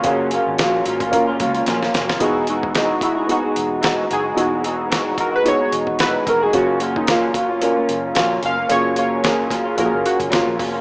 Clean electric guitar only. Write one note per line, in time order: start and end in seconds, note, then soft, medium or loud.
0.04 0.30 F#3 medium
0.04 0.31 A#3 medium
0.04 0.32 C#4 medium
0.04 0.32 F4 medium
0.31 0.58 F#3 medium
0.31 0.58 A#3 medium
0.31 0.59 C#4 medium
0.31 0.59 F4 medium
0.59 0.84 F#3 medium
0.59 0.85 A#3 medium
0.59 0.86 C#4 loud
0.59 0.87 F4 loud
0.85 1.00 F#3 medium
0.85 1.01 A#3 medium
0.85 1.01 C#4 medium
0.85 0.99 F4 medium
1.00 1.29 A#3 soft
1.00 1.28 C#4 soft
1.00 1.26 F4 medium
1.27 1.39 A#3 soft
1.27 1.40 C#4 soft
1.27 1.40 F4 medium
1.39 1.54 F#3 medium
1.39 1.55 A#3 medium
1.39 1.55 C#4 medium
1.39 1.53 F4 medium
1.54 1.66 A#3 soft
1.54 1.67 C#4 medium
1.54 1.67 F4 medium
1.67 1.93 F#3 medium
1.67 1.94 A#3 medium
1.67 1.94 C#4 medium
1.67 1.95 F4 loud
1.94 2.09 F#3 medium
1.94 2.09 A#3 medium
1.94 2.09 C#4 medium
1.94 2.07 F4 medium
2.08 2.22 A#3 soft
2.08 2.21 C#4 medium
2.08 2.21 F4 medium
2.21 2.46 E3 medium
2.21 2.47 G#3 medium
2.21 2.48 D#4 medium
2.21 2.49 F#4 medium
2.47 2.73 E3 medium
2.47 2.74 G#3 medium
2.47 2.75 D#4 medium
2.47 2.75 F#4 medium
2.75 2.99 E3 medium
2.75 3.01 G#3 medium
2.75 3.02 D#4 medium
2.75 3.03 F#4 medium
3.01 3.16 E3 medium
3.01 3.17 G#3 medium
3.01 3.15 D#4 medium
3.01 3.14 F#4 medium
3.15 3.28 G#3 soft
3.15 3.28 D#4 soft
3.15 3.28 F#4 medium
3.28 3.43 E3 medium
3.28 3.44 G#3 medium
3.28 3.43 D#4 medium
3.28 3.41 F#4 medium
3.43 3.81 G#3 soft
3.43 3.82 D#4 soft
3.43 3.82 F#4 medium
3.81 4.07 E3 medium
3.81 4.09 G#3 medium
3.81 4.09 D#4 medium
3.81 4.10 F#4 medium
4.09 4.24 E3 medium
4.09 4.25 G#3 medium
4.09 4.24 D#4 medium
4.09 4.22 F#4 medium
4.23 4.35 G#3 soft
4.23 4.36 D#4 soft
4.23 4.36 F#4 medium
4.36 4.62 E3 medium
4.36 4.63 G#3 medium
4.36 4.64 D#4 medium
4.36 4.65 F#4 medium
4.63 4.88 E3 medium
4.63 4.90 G#3 medium
4.63 4.90 D#4 medium
4.63 4.91 F#4 medium
4.90 5.15 E3 medium
4.90 5.16 G#3 medium
4.90 5.17 D#4 loud
4.90 5.18 F#4 medium
5.17 5.32 E3 medium
5.17 5.33 G#3 medium
5.17 5.32 D#4 medium
5.17 5.30 F#4 medium
5.32 5.44 G#3 soft
5.32 5.45 D#4 soft
5.32 5.45 F#4 soft
5.44 5.60 E3 medium
5.44 5.60 G#3 medium
5.44 5.60 D#4 medium
5.44 5.58 F#4 medium
5.59 5.99 G#3 soft
5.59 5.99 D#4 soft
5.59 5.99 F#4 soft
5.99 6.25 E3 medium
5.99 6.26 G#3 medium
5.99 6.27 D#4 medium
5.99 6.27 F#4 medium
6.26 6.41 E3 medium
6.26 6.42 G#3 medium
6.26 6.42 D#4 medium
6.26 6.40 F#4 medium
6.41 6.54 G#3 soft
6.41 6.54 D#4 medium
6.41 6.54 F#4 medium
6.53 6.79 F#3 medium
6.53 6.80 A#3 medium
6.53 6.81 C#4 medium
6.53 6.82 F4 medium
6.80 7.07 F#3 medium
6.80 7.07 A#3 medium
6.80 7.08 C#4 medium
6.80 7.08 F4 medium
7.08 7.32 F#3 medium
7.08 7.33 A#3 medium
7.08 7.35 C#4 medium
7.08 7.36 F4 medium
7.34 7.49 F#3 medium
7.34 7.50 A#3 medium
7.34 7.50 C#4 medium
7.34 7.48 F4 medium
7.49 7.61 A#3 soft
7.49 7.62 C#4 medium
7.49 7.62 F4 medium
7.61 7.76 F#3 medium
7.61 7.77 A#3 medium
7.61 7.76 C#4 medium
7.61 7.74 F4 medium
7.75 8.14 A#3 soft
7.75 8.15 C#4 soft
7.75 8.15 F4 medium
8.15 8.41 F#3 medium
8.15 8.42 A#3 loud
8.15 8.43 C#4 medium
8.15 8.43 F4 loud
8.42 8.57 F#3 medium
8.42 8.58 A#3 medium
8.42 8.57 C#4 medium
8.42 8.55 F4 medium
8.56 8.69 A#3 soft
8.56 8.69 C#4 medium
8.56 8.69 F4 medium
8.69 8.94 F#3 medium
8.69 8.96 A#3 medium
8.69 8.96 C#4 medium
8.69 8.97 F4 medium
8.95 9.22 F#3 medium
8.95 9.22 A#3 medium
8.95 9.23 C#4 medium
8.95 9.23 F4 medium
9.23 9.47 F#3 medium
9.23 9.49 A#3 medium
9.23 9.50 C#4 medium
9.23 9.51 F4 medium
9.49 9.65 F#3 medium
9.49 9.65 A#3 medium
9.49 9.64 C#4 medium
9.49 9.62 F4 medium
9.64 9.75 A#3 soft
9.64 9.76 C#4 soft
9.64 9.77 F4 medium
9.75 9.92 F#3 medium
9.75 9.92 A#3 medium
9.75 9.91 C#4 medium
9.75 9.90 F4 medium
9.91 10.29 A#3 soft
9.91 10.30 C#4 soft
9.91 10.31 F4 soft
10.30 10.56 F#3 medium
10.30 10.57 A#3 medium
10.30 10.58 C#4 medium
10.30 10.59 F4 medium
10.57 10.73 F#3 medium
10.57 10.74 A#3 medium
10.57 10.73 C#4 medium
10.57 10.71 F4 medium
10.72 10.81 A#3 soft
10.72 10.81 C#4 medium
10.72 10.81 F4 soft